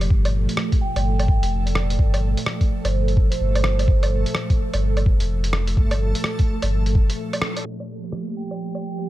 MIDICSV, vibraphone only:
0, 0, Header, 1, 2, 480
1, 0, Start_track
1, 0, Key_signature, -2, "minor"
1, 0, Tempo, 472441
1, 102, Time_signature, 4, 2, 24, 8
1, 9238, End_track
2, 0, Start_track
2, 0, Title_t, "Vibraphone"
2, 0, Program_c, 0, 11
2, 827, Note_on_c, 0, 79, 85
2, 1286, Note_off_c, 0, 79, 0
2, 1299, Note_on_c, 0, 79, 89
2, 1397, Note_off_c, 0, 79, 0
2, 1454, Note_on_c, 0, 79, 74
2, 1510, Note_off_c, 0, 79, 0
2, 1686, Note_on_c, 0, 74, 89
2, 2169, Note_off_c, 0, 74, 0
2, 2891, Note_on_c, 0, 72, 94
2, 2948, Note_off_c, 0, 72, 0
2, 2974, Note_on_c, 0, 72, 74
2, 3074, Note_off_c, 0, 72, 0
2, 3355, Note_on_c, 0, 72, 92
2, 3573, Note_off_c, 0, 72, 0
2, 3600, Note_on_c, 0, 72, 92
2, 4266, Note_off_c, 0, 72, 0
2, 8503, Note_on_c, 0, 79, 78
2, 8959, Note_off_c, 0, 79, 0
2, 8972, Note_on_c, 0, 79, 76
2, 9073, Note_off_c, 0, 79, 0
2, 9126, Note_on_c, 0, 79, 65
2, 9186, Note_off_c, 0, 79, 0
2, 9238, End_track
0, 0, End_of_file